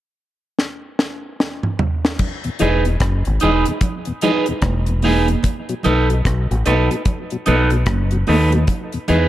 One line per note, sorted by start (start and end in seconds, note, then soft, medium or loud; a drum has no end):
0.59 snare medium
0.99 snare medium
1.40 snare medium
1.63 mid tom medium
1.79 floor tom loud
2.05 snare medium
2.19 kick loud
2.19 crash medium
2.19 low conga medium
2.44 2.50 E2 medium
2.44 2.50 B2 medium
2.44 closed hi-hat soft
2.59 2.97 E1 loud
2.59 2.69 E3 medium
2.59 2.69 G#3 medium
2.59 2.83 D#4 medium
2.59 2.69 D#4 medium
2.59 2.84 G#4 medium
2.59 2.84 B4 medium
2.59 closed hi-hat medium
2.59 low conga medium
2.85 2.91 E2 medium
2.85 2.91 B2 medium
2.85 closed hi-hat medium
3.00 3.23 F#1 medium
3.00 kick loud
3.00 cross-stick loud
3.00 closed hi-hat medium
3.25 3.40 G#1 medium
3.25 3.32 E2 medium
3.25 3.32 B2 medium
3.25 closed hi-hat soft
3.40 3.64 E1 medium
3.40 3.50 E3 medium
3.40 3.51 G#3 medium
3.40 3.64 D#4 medium
3.40 3.51 D#4 medium
3.40 3.64 G#4 medium
3.40 3.65 B4 medium
3.40 closed hi-hat medium
3.65 3.72 E2 medium
3.65 3.72 B2 medium
3.65 muted clean electric guitar stroke soft
3.65 closed hi-hat medium
3.81 kick loud
3.81 closed hi-hat medium
3.81 low conga medium
4.05 4.13 E2 medium
4.05 4.12 B2 medium
4.05 closed hi-hat soft
4.21 4.31 E3 medium
4.21 4.31 G#3 medium
4.21 4.45 D#4 medium
4.21 4.32 D#4 medium
4.21 4.45 G#4 medium
4.21 4.46 B4 medium
4.21 closed hi-hat medium
4.21 low conga medium
4.46 4.53 E2 medium
4.46 4.53 B2 medium
4.46 closed hi-hat soft
4.62 5.34 E1 loud
4.62 kick medium
4.62 cross-stick loud
4.62 closed hi-hat medium
4.62 high conga medium
4.86 4.94 E2 medium
4.86 4.94 B2 medium
4.86 closed hi-hat soft
5.02 5.12 E3 medium
5.02 5.12 G#3 medium
5.02 5.26 D#4 medium
5.02 5.13 D#4 medium
5.02 5.27 G#4 medium
5.02 5.27 B4 medium
5.02 open hi-hat medium
5.02 high conga medium
5.26 5.34 E2 medium
5.26 5.34 B2 medium
5.26 closed hi-hat medium
5.26 high conga medium
5.43 kick medium
5.43 closed hi-hat medium
5.43 low conga medium
5.69 5.75 B2 medium
5.69 5.75 F#3 medium
5.69 closed hi-hat soft
5.83 6.21 B1 medium
5.83 5.93 A3 medium
5.83 5.93 B3 medium
5.83 6.07 D#4 medium
5.83 5.93 D#4 medium
5.83 6.08 A4 medium
5.83 6.08 B4 medium
5.83 closed hi-hat medium
5.83 low conga medium
6.10 6.15 B2 medium
6.10 6.15 F#3 soft
6.10 closed hi-hat soft
6.25 6.47 B1 medium
6.25 kick loud
6.25 cross-stick loud
6.25 closed hi-hat medium
6.51 6.64 A1 medium
6.51 6.56 B2 medium
6.51 6.56 F#3 medium
6.51 closed hi-hat soft
6.66 6.88 B1 medium
6.66 6.74 A3 medium
6.66 6.74 B3 medium
6.66 6.88 D#4 medium
6.66 6.75 D#4 medium
6.66 6.89 A4 medium
6.66 6.89 B4 medium
6.66 closed hi-hat medium
6.91 6.96 B2 medium
6.91 6.96 F#3 medium
6.91 muted clean electric guitar stroke soft
6.91 closed hi-hat medium
7.05 kick loud
7.05 closed hi-hat medium
7.05 low conga medium
7.30 7.37 B2 medium
7.30 7.37 F#3 medium
7.30 closed hi-hat soft
7.46 7.83 B1 medium
7.46 7.55 A3 medium
7.46 7.55 B3 medium
7.46 7.69 D#4 medium
7.46 7.56 D#4 medium
7.46 7.70 A4 medium
7.46 7.70 B4 loud
7.46 closed hi-hat medium
7.46 low conga medium
7.70 7.77 B2 medium
7.70 7.77 F#3 medium
7.70 muted clean electric guitar stroke soft
7.70 closed hi-hat soft
7.86 8.23 F#1 loud
7.86 kick loud
7.86 cross-stick loud
7.86 closed hi-hat medium
7.86 high conga medium
8.11 8.18 B2 medium
8.11 8.18 F#3 medium
8.11 closed hi-hat soft
8.27 8.64 D#2 loud
8.27 8.37 A3 medium
8.27 8.37 B3 medium
8.27 8.50 D#4 medium
8.27 8.37 D#4 medium
8.27 8.51 A4 medium
8.27 8.51 B4 medium
8.27 open hi-hat medium
8.27 high conga medium
8.51 8.58 B2 medium
8.51 8.58 F#3 medium
8.51 closed hi-hat medium
8.51 high conga soft
8.67 kick loud
8.67 closed hi-hat medium
8.67 low conga medium
8.92 8.99 E2 medium
8.92 8.99 B2 soft
8.92 closed hi-hat soft
9.08 9.28 E2 loud
9.08 9.17 E3 medium
9.08 9.17 G#3 medium
9.08 9.28 D#4 medium
9.08 9.18 D#4 medium
9.08 9.28 G#4 medium
9.08 9.28 B4 medium
9.08 closed hi-hat medium
9.08 low conga medium